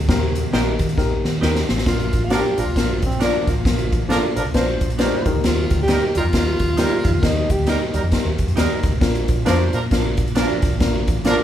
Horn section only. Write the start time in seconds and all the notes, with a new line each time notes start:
2.30 F3 D4 A#4
2.57 F3 D4 A#4
2.75 F3 D4 A#4
3.20 F3 D4 A#4
4.09 F3 D4 A#4
4.36 F3 D4 A#4
4.54 F3 D4 A#4
4.98 G3 D#4 A#4
5.89 G3 D#4 A#4
6.16 G3 D#4 A#4
6.34 G3 D#4 A#4
6.79 G3 D#4 A#4
7.67 G3 D#4 A#4
7.94 G3 D#4 A#4
8.11 G3 D#4 A#4
8.56 G3 D#4 A#4
9.45 F3 D4 A#4
9.73 F3 D4 A#4
9.91 F3 D4 A#4
10.36 F3 D4 A#4
11.25 F3 D4 A#4